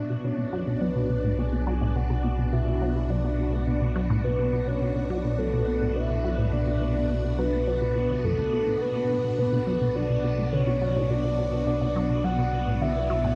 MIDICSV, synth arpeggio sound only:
0, 0, Header, 1, 2, 480
1, 0, Start_track
1, 0, Key_signature, 2, "minor"
1, 0, Tempo, 571429
1, 1643, Time_signature, 4, 2, 24, 8
1, 11215, End_track
2, 0, Start_track
2, 0, Title_t, "Synth arpeggio sound"
2, 0, Program_c, 0, 84
2, 82, Note_on_c, 0, 47, 73
2, 119, Note_off_c, 0, 47, 0
2, 203, Note_on_c, 0, 47, 82
2, 264, Note_off_c, 0, 47, 0
2, 323, Note_on_c, 0, 47, 73
2, 360, Note_off_c, 0, 47, 0
2, 443, Note_on_c, 0, 54, 101
2, 504, Note_off_c, 0, 54, 0
2, 563, Note_on_c, 0, 47, 71
2, 654, Note_off_c, 0, 47, 0
2, 681, Note_on_c, 0, 54, 79
2, 743, Note_off_c, 0, 54, 0
2, 803, Note_on_c, 0, 47, 71
2, 864, Note_off_c, 0, 47, 0
2, 923, Note_on_c, 0, 47, 66
2, 984, Note_off_c, 0, 47, 0
2, 1043, Note_on_c, 0, 45, 74
2, 1104, Note_off_c, 0, 45, 0
2, 1163, Note_on_c, 0, 47, 79
2, 1224, Note_off_c, 0, 47, 0
2, 1283, Note_on_c, 0, 47, 73
2, 1319, Note_off_c, 0, 47, 0
2, 1403, Note_on_c, 0, 54, 98
2, 1464, Note_off_c, 0, 54, 0
2, 1524, Note_on_c, 0, 45, 98
2, 1584, Note_off_c, 0, 45, 0
2, 1644, Note_on_c, 0, 47, 80
2, 1704, Note_off_c, 0, 47, 0
2, 1765, Note_on_c, 0, 47, 75
2, 1824, Note_off_c, 0, 47, 0
2, 1884, Note_on_c, 0, 47, 73
2, 1944, Note_off_c, 0, 47, 0
2, 2004, Note_on_c, 0, 47, 76
2, 2040, Note_off_c, 0, 47, 0
2, 2123, Note_on_c, 0, 47, 81
2, 2184, Note_off_c, 0, 47, 0
2, 2244, Note_on_c, 0, 47, 74
2, 2280, Note_off_c, 0, 47, 0
2, 2364, Note_on_c, 0, 54, 94
2, 2424, Note_off_c, 0, 54, 0
2, 2484, Note_on_c, 0, 47, 73
2, 2574, Note_off_c, 0, 47, 0
2, 2604, Note_on_c, 0, 54, 78
2, 2664, Note_off_c, 0, 54, 0
2, 2724, Note_on_c, 0, 47, 72
2, 2784, Note_off_c, 0, 47, 0
2, 2844, Note_on_c, 0, 47, 72
2, 2904, Note_off_c, 0, 47, 0
2, 2964, Note_on_c, 0, 45, 73
2, 3024, Note_off_c, 0, 45, 0
2, 3084, Note_on_c, 0, 47, 78
2, 3144, Note_off_c, 0, 47, 0
2, 3204, Note_on_c, 0, 47, 75
2, 3240, Note_off_c, 0, 47, 0
2, 3323, Note_on_c, 0, 54, 94
2, 3384, Note_off_c, 0, 54, 0
2, 3444, Note_on_c, 0, 45, 101
2, 3504, Note_off_c, 0, 45, 0
2, 3564, Note_on_c, 0, 47, 79
2, 3624, Note_off_c, 0, 47, 0
2, 3685, Note_on_c, 0, 47, 72
2, 3745, Note_off_c, 0, 47, 0
2, 3804, Note_on_c, 0, 47, 73
2, 3864, Note_off_c, 0, 47, 0
2, 3924, Note_on_c, 0, 47, 72
2, 3960, Note_off_c, 0, 47, 0
2, 4045, Note_on_c, 0, 47, 76
2, 4105, Note_off_c, 0, 47, 0
2, 4164, Note_on_c, 0, 47, 74
2, 4200, Note_off_c, 0, 47, 0
2, 4284, Note_on_c, 0, 54, 98
2, 4344, Note_off_c, 0, 54, 0
2, 4405, Note_on_c, 0, 47, 76
2, 4495, Note_off_c, 0, 47, 0
2, 4524, Note_on_c, 0, 54, 77
2, 4584, Note_off_c, 0, 54, 0
2, 4644, Note_on_c, 0, 47, 72
2, 4704, Note_off_c, 0, 47, 0
2, 4765, Note_on_c, 0, 47, 74
2, 4825, Note_off_c, 0, 47, 0
2, 4885, Note_on_c, 0, 45, 72
2, 4944, Note_off_c, 0, 45, 0
2, 5005, Note_on_c, 0, 47, 79
2, 5065, Note_off_c, 0, 47, 0
2, 5125, Note_on_c, 0, 47, 80
2, 5161, Note_off_c, 0, 47, 0
2, 5244, Note_on_c, 0, 54, 96
2, 5304, Note_off_c, 0, 54, 0
2, 5364, Note_on_c, 0, 45, 100
2, 5424, Note_off_c, 0, 45, 0
2, 5485, Note_on_c, 0, 47, 78
2, 5545, Note_off_c, 0, 47, 0
2, 5604, Note_on_c, 0, 47, 74
2, 5664, Note_off_c, 0, 47, 0
2, 5725, Note_on_c, 0, 47, 70
2, 5785, Note_off_c, 0, 47, 0
2, 5845, Note_on_c, 0, 47, 68
2, 5881, Note_off_c, 0, 47, 0
2, 5964, Note_on_c, 0, 47, 80
2, 6024, Note_off_c, 0, 47, 0
2, 6085, Note_on_c, 0, 47, 70
2, 6120, Note_off_c, 0, 47, 0
2, 6203, Note_on_c, 0, 54, 95
2, 6264, Note_off_c, 0, 54, 0
2, 6324, Note_on_c, 0, 47, 72
2, 6414, Note_off_c, 0, 47, 0
2, 6444, Note_on_c, 0, 54, 81
2, 6504, Note_off_c, 0, 54, 0
2, 6564, Note_on_c, 0, 47, 73
2, 6624, Note_off_c, 0, 47, 0
2, 6684, Note_on_c, 0, 47, 66
2, 6744, Note_off_c, 0, 47, 0
2, 6804, Note_on_c, 0, 38, 72
2, 6840, Note_off_c, 0, 38, 0
2, 6924, Note_on_c, 0, 42, 98
2, 6984, Note_off_c, 0, 42, 0
2, 7043, Note_on_c, 0, 38, 78
2, 7134, Note_off_c, 0, 38, 0
2, 7164, Note_on_c, 0, 47, 73
2, 7224, Note_off_c, 0, 47, 0
2, 7284, Note_on_c, 0, 45, 75
2, 7344, Note_off_c, 0, 45, 0
2, 7403, Note_on_c, 0, 47, 80
2, 7464, Note_off_c, 0, 47, 0
2, 7523, Note_on_c, 0, 47, 71
2, 7584, Note_off_c, 0, 47, 0
2, 7642, Note_on_c, 0, 47, 73
2, 7703, Note_off_c, 0, 47, 0
2, 7763, Note_on_c, 0, 47, 71
2, 7799, Note_off_c, 0, 47, 0
2, 7883, Note_on_c, 0, 47, 82
2, 7944, Note_off_c, 0, 47, 0
2, 8003, Note_on_c, 0, 47, 77
2, 8040, Note_off_c, 0, 47, 0
2, 8122, Note_on_c, 0, 54, 102
2, 8183, Note_off_c, 0, 54, 0
2, 8243, Note_on_c, 0, 47, 71
2, 8334, Note_off_c, 0, 47, 0
2, 8362, Note_on_c, 0, 54, 76
2, 8423, Note_off_c, 0, 54, 0
2, 8481, Note_on_c, 0, 47, 73
2, 8543, Note_off_c, 0, 47, 0
2, 8603, Note_on_c, 0, 47, 72
2, 8664, Note_off_c, 0, 47, 0
2, 8723, Note_on_c, 0, 45, 74
2, 8784, Note_off_c, 0, 45, 0
2, 8843, Note_on_c, 0, 50, 78
2, 8904, Note_off_c, 0, 50, 0
2, 8963, Note_on_c, 0, 47, 76
2, 8999, Note_off_c, 0, 47, 0
2, 9084, Note_on_c, 0, 54, 94
2, 9144, Note_off_c, 0, 54, 0
2, 9204, Note_on_c, 0, 45, 99
2, 9264, Note_off_c, 0, 45, 0
2, 9323, Note_on_c, 0, 47, 78
2, 9384, Note_off_c, 0, 47, 0
2, 9444, Note_on_c, 0, 47, 70
2, 9504, Note_off_c, 0, 47, 0
2, 9564, Note_on_c, 0, 47, 71
2, 9624, Note_off_c, 0, 47, 0
2, 9684, Note_on_c, 0, 47, 72
2, 9720, Note_off_c, 0, 47, 0
2, 9804, Note_on_c, 0, 47, 81
2, 9864, Note_off_c, 0, 47, 0
2, 9924, Note_on_c, 0, 47, 76
2, 9960, Note_off_c, 0, 47, 0
2, 10044, Note_on_c, 0, 54, 100
2, 10104, Note_off_c, 0, 54, 0
2, 10165, Note_on_c, 0, 47, 71
2, 10255, Note_off_c, 0, 47, 0
2, 10284, Note_on_c, 0, 54, 81
2, 10344, Note_off_c, 0, 54, 0
2, 10403, Note_on_c, 0, 47, 73
2, 10464, Note_off_c, 0, 47, 0
2, 10524, Note_on_c, 0, 47, 73
2, 10584, Note_off_c, 0, 47, 0
2, 10644, Note_on_c, 0, 45, 72
2, 10704, Note_off_c, 0, 45, 0
2, 10764, Note_on_c, 0, 50, 79
2, 10824, Note_off_c, 0, 50, 0
2, 10884, Note_on_c, 0, 47, 79
2, 10920, Note_off_c, 0, 47, 0
2, 11003, Note_on_c, 0, 54, 100
2, 11064, Note_off_c, 0, 54, 0
2, 11123, Note_on_c, 0, 45, 103
2, 11184, Note_off_c, 0, 45, 0
2, 11215, End_track
0, 0, End_of_file